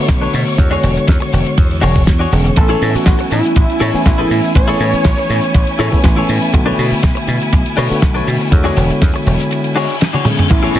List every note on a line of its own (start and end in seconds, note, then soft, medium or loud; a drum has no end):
0.00 0.55 D3 medium
0.00 0.56 A3 medium
0.00 0.56 B3 medium
0.00 0.56 F#4 loud
0.00 2.58 C#5 medium
0.00 2.58 C#6 medium
0.08 0.26 B1 medium
0.08 kick loud
0.08 snare loud
0.08 closed hi-hat medium
0.08 ride medium
0.08 shaker soft
0.21 0.34 D4 medium
0.21 0.34 A4 medium
0.21 0.34 B4 medium
0.21 0.34 C#5 loud
0.34 0.43 B2 medium
0.34 open hi-hat loud
0.34 shaker medium
0.47 muted clean electric guitar stroke soft
0.47 shaker medium
0.58 0.76 E2 loud
0.58 1.92 D3 medium
0.58 1.92 G#3 medium
0.58 1.93 B3 medium
0.58 1.93 F#4 loud
0.58 1.93 C#5 medium
0.58 kick loud
0.58 closed hi-hat medium
0.58 ride medium
0.58 shaker medium
0.71 0.90 D4 loud
0.71 0.90 F#4 loud
0.71 0.90 G#4 loud
0.71 0.91 C#5 loud
0.71 closed hi-hat soft
0.83 0.96 E1 loud
0.83 open hi-hat loud
0.83 shaker medium
0.96 muted slap bass stroke soft
0.96 closed hi-hat medium
0.96 shaker medium
1.07 1.17 E2 loud
1.07 muted clean electric guitar stroke soft
1.07 kick loud
1.07 snare loud
1.07 closed hi-hat loud
1.07 ride medium
1.07 shaker medium
1.20 muted clean electric guitar stroke medium
1.20 closed hi-hat medium
1.32 1.42 E1 medium
1.32 muted clean electric guitar stroke soft
1.32 open hi-hat loud
1.32 shaker medium
1.46 closed hi-hat medium
1.46 shaker medium
1.58 1.84 E2 medium
1.58 kick loud
1.58 closed hi-hat medium
1.58 ride medium
1.58 shaker medium
1.71 closed hi-hat medium
1.81 2.09 E1 loud
1.81 2.01 D4 loud
1.81 2.01 F#4 loud
1.81 2.02 G#4 loud
1.81 2.02 C#5 loud
1.81 open hi-hat loud
1.81 shaker medium
1.96 kick medium
1.96 shaker medium
2.07 2.25 E2 medium
2.07 kick loud
2.07 snare loud
2.07 closed hi-hat medium
2.07 ride medium
2.07 shaker medium
2.19 2.32 D4 medium
2.19 2.32 F#4 medium
2.19 2.32 G#4 medium
2.19 2.33 C#5 loud
2.32 2.49 E1 medium
2.32 2.54 D3 medium
2.32 2.54 G#3 medium
2.32 2.54 B3 medium
2.32 2.54 C#4 medium
2.32 2.54 G#4 medium
2.32 open hi-hat loud
2.32 shaker medium
2.44 muted clean electric guitar stroke soft
2.44 closed hi-hat soft
2.44 shaker medium
2.56 2.74 A1 medium
2.56 3.90 E3 medium
2.56 3.91 A3 medium
2.56 3.91 B3 medium
2.56 3.91 C#4 medium
2.56 10.52 E4 medium
2.56 2.97 A4 loud
2.56 10.52 G#5 medium
2.56 3.91 G#5 loud
2.56 kick loud
2.56 closed hi-hat medium
2.56 ride medium
2.56 shaker soft
2.69 2.88 E4 loud
2.69 2.88 G#4 loud
2.69 2.88 A4 loud
2.69 2.89 C#5 loud
2.82 2.94 A2 loud
2.82 open hi-hat loud
2.82 shaker medium
2.95 3.32 F#4 medium
2.95 muted slap bass stroke soft
2.95 open hi-hat medium
2.95 shaker medium
3.06 3.15 A1 medium
3.06 muted clean electric guitar stroke soft
3.06 kick loud
3.06 snare loud
3.06 closed hi-hat medium
3.06 ride medium
3.06 shaker medium
3.19 muted clean electric guitar stroke medium
3.19 closed hi-hat medium
3.31 3.40 A2 medium
3.31 4.02 E4 loud
3.31 muted clean electric guitar stroke soft
3.31 open hi-hat loud
3.31 shaker medium
3.44 closed hi-hat medium
3.44 shaker medium
3.56 3.65 A1 medium
3.56 kick loud
3.56 closed hi-hat medium
3.56 ride medium
3.56 shaker medium
3.70 closed hi-hat medium
3.80 3.90 A2 loud
3.80 4.00 E4 loud
3.80 4.00 G#4 loud
3.80 4.00 A4 loud
3.80 4.00 C#5 loud
3.80 open hi-hat loud
3.80 shaker medium
3.93 4.52 E3 medium
3.93 4.52 A3 medium
3.93 4.53 B3 medium
3.93 4.53 C#4 medium
3.93 4.53 G#5 loud
3.93 muted slap bass stroke soft
3.93 shaker medium
4.06 4.23 A1 medium
4.06 4.52 E4 medium
4.06 kick loud
4.06 snare loud
4.06 closed hi-hat medium
4.06 ride medium
4.06 shaker medium
4.18 4.30 E4 medium
4.18 4.31 G#4 medium
4.18 4.31 A4 medium
4.18 4.31 B4 loud
4.30 4.39 A2 medium
4.30 open hi-hat loud
4.30 shaker medium
4.43 muted clean electric guitar stroke soft
4.43 shaker medium
4.55 4.73 A1 loud
4.55 5.89 E3 medium
4.55 5.89 A3 medium
4.55 5.90 B3 medium
4.55 5.90 C#4 medium
4.55 6.01 C#5 loud
4.55 5.90 G#5 loud
4.55 kick loud
4.55 closed hi-hat medium
4.55 ride medium
4.55 shaker medium
4.68 4.86 E4 loud
4.68 4.87 G#4 loud
4.68 4.87 A4 loud
4.68 4.87 C#5 loud
4.80 4.93 A2 loud
4.80 open hi-hat loud
4.80 shaker medium
4.93 muted slap bass stroke soft
4.93 closed hi-hat medium
4.93 shaker medium
5.04 5.14 A1 medium
5.04 muted clean electric guitar stroke soft
5.04 kick loud
5.04 snare loud
5.04 closed hi-hat loud
5.04 ride medium
5.04 shaker medium
5.17 muted clean electric guitar stroke medium
5.17 closed hi-hat soft
5.29 5.39 A2 medium
5.29 muted clean electric guitar stroke soft
5.29 open hi-hat loud
5.29 shaker medium
5.42 closed hi-hat medium
5.42 shaker medium
5.54 5.63 A1 medium
5.54 kick loud
5.54 closed hi-hat medium
5.54 ride medium
5.54 shaker medium
5.67 closed hi-hat medium
5.79 5.88 A2 medium
5.79 5.98 E4 loud
5.79 5.98 G#4 loud
5.79 5.99 A4 loud
5.79 5.99 C#5 loud
5.79 open hi-hat loud
5.79 shaker loud
5.91 6.50 E3 medium
5.91 6.51 A3 medium
5.91 6.51 B3 medium
5.91 6.51 C#4 medium
5.91 6.51 G#5 loud
5.91 muted slap bass stroke soft
5.91 kick medium
5.91 shaker medium
6.04 6.21 A1 medium
6.04 kick loud
6.04 snare loud
6.04 closed hi-hat medium
6.04 ride medium
6.04 shaker soft
6.17 6.29 E4 medium
6.17 6.29 G#4 medium
6.17 6.29 A4 medium
6.17 6.30 C#5 loud
6.29 6.38 A2 medium
6.29 open hi-hat loud
6.29 shaker medium
6.41 muted clean electric guitar stroke soft
6.41 shaker medium
6.53 6.71 B1 loud
6.53 7.87 D3 medium
6.53 7.87 A3 medium
6.53 7.88 B3 medium
6.53 7.88 F#4 loud
6.53 kick loud
6.53 closed hi-hat loud
6.53 ride medium
6.53 shaker medium
6.66 6.85 D4 loud
6.66 6.85 A4 loud
6.66 6.85 B4 loud
6.66 6.85 C#5 loud
6.78 6.91 B2 loud
6.78 open hi-hat loud
6.78 shaker loud
6.92 muted slap bass stroke soft
6.92 open hi-hat medium
6.92 shaker medium
7.02 7.12 B1 loud
7.02 muted clean electric guitar stroke soft
7.02 kick loud
7.02 snare loud
7.02 closed hi-hat loud
7.02 ride medium
7.02 shaker medium
7.15 muted clean electric guitar stroke medium
7.15 closed hi-hat medium
7.27 7.37 B2 medium
7.27 muted clean electric guitar stroke soft
7.27 open hi-hat loud
7.27 shaker medium
7.42 closed hi-hat medium
7.42 shaker medium
7.53 7.62 B1 medium
7.53 kick loud
7.53 closed hi-hat loud
7.53 ride medium
7.53 shaker soft
7.66 closed hi-hat medium
7.77 7.87 B2 loud
7.77 7.96 D4 loud
7.77 7.97 A4 loud
7.77 7.97 B4 loud
7.77 7.97 C#5 loud
7.77 open hi-hat loud
7.77 shaker medium
7.90 8.49 D3 loud
7.90 8.49 A3 medium
7.90 8.49 B3 medium
7.90 8.50 F#4 loud
7.90 muted slap bass stroke soft
7.90 shaker medium
8.02 8.20 B1 medium
8.02 kick loud
8.02 snare loud
8.02 closed hi-hat loud
8.02 ride medium
8.02 shaker soft
8.14 8.27 D4 medium
8.14 8.27 A4 medium
8.14 8.27 B4 medium
8.14 8.28 C#5 loud
8.27 8.36 B2 medium
8.27 open hi-hat loud
8.27 shaker loud
8.39 muted clean electric guitar stroke soft
8.39 shaker medium
8.51 8.69 E2 loud
8.51 9.85 D3 medium
8.51 9.86 G#3 medium
8.51 9.86 B3 medium
8.51 9.87 F#4 loud
8.51 9.86 C#5 medium
8.51 kick loud
8.51 closed hi-hat medium
8.51 ride medium
8.51 shaker medium
8.64 8.83 D4 loud
8.64 8.83 F#4 loud
8.64 8.83 G#4 loud
8.64 8.84 C#5 loud
8.64 closed hi-hat medium
8.77 8.89 E1 loud
8.77 open hi-hat loud
8.77 shaker medium
8.90 muted slap bass stroke soft
8.90 closed hi-hat medium
8.90 shaker medium
9.01 9.11 E2 medium
9.01 muted clean electric guitar stroke soft
9.01 kick loud
9.01 snare loud
9.01 closed hi-hat loud
9.01 ride medium
9.01 shaker medium
9.14 muted clean electric guitar stroke medium
9.14 closed hi-hat medium
9.26 9.35 E1 medium
9.26 muted clean electric guitar stroke soft
9.26 open hi-hat loud
9.26 shaker medium
9.40 closed hi-hat medium
9.40 shaker medium
9.51 closed hi-hat medium
9.51 ride medium
9.51 reverse cymbal medium
9.51 shaker medium
9.64 closed hi-hat medium
9.75 9.95 D4 loud
9.75 9.95 F#4 loud
9.75 9.95 G#4 loud
9.75 9.96 C#5 loud
9.75 open hi-hat loud
9.75 shaker medium
9.90 open hi-hat medium
9.90 shaker medium
10.01 snare loud
10.01 closed hi-hat medium
10.01 ride medium
10.01 shaker medium
10.13 10.25 D4 medium
10.13 10.26 F#4 medium
10.13 10.26 G#4 medium
10.13 10.26 C#5 loud
10.13 high tom soft
10.25 10.47 D3 medium
10.25 10.48 G#3 medium
10.25 10.48 B3 medium
10.25 10.48 C#4 medium
10.25 10.48 G#4 medium
10.25 open hi-hat loud
10.25 mid tom medium
10.25 shaker loud
10.38 muted clean electric guitar stroke soft
10.38 closed hi-hat medium
10.38 mid tom medium
10.38 shaker medium
10.49 10.68 A1 loud
10.49 10.80 E3 medium
10.49 10.80 A3 medium
10.49 10.80 B3 medium
10.49 10.80 C#4 medium
10.49 10.80 E4 loud
10.49 10.80 C#5 medium
10.49 10.80 G#5 loud
10.49 10.80 C#6 medium
10.49 kick loud
10.49 closed hi-hat medium
10.49 crash medium
10.49 ride medium
10.49 shaker medium
10.63 10.80 E4 loud
10.63 10.80 G#4 loud
10.63 10.80 A4 loud
10.63 10.80 C#5 loud
10.75 10.80 A2 loud
10.75 open hi-hat loud
10.75 shaker medium